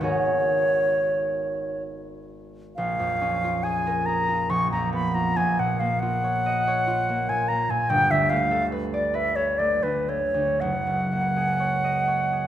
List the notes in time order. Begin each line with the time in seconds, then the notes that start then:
Already playing: D#4 B4
0.01 G#1 B3 F#4 G#4 A#4 C#5
2.76 A#1 F5
2.99 F2
3.21 C#4
3.44 F4
3.63 G#4 G#5
3.87 A#4
4.06 G#4 A#5
4.29 F4
4.49 A#1 C#6
4.72 F2 A#5
4.93 B3 B5
5.15 F4 A#5
5.37 A#1 G#5
5.59 A#2 F#5
5.79 A#3 F5
5.99 F4 F#5
6.24 C#5
6.46 D#5
6.67 C#5
6.87 F4
7.09 A#3
7.29 A#2 G#5
7.48 A#3 A#5
7.70 A#2 G#5
7.89 G1 G5
8.11 D2 E5
8.30 A3 F5
8.51 A4
8.72 B4
8.94 D5
9.14 B4 E5
9.36 A4 C#5
9.58 A3 D5
9.83 D2 B4
10.09 A3 C#5
10.34 D2
10.60 F#1 F#5
10.87 C#2
11.12 A#3
11.36 G#4
11.60 C#5
11.84 D#5
12.07 C#5
12.32 G#4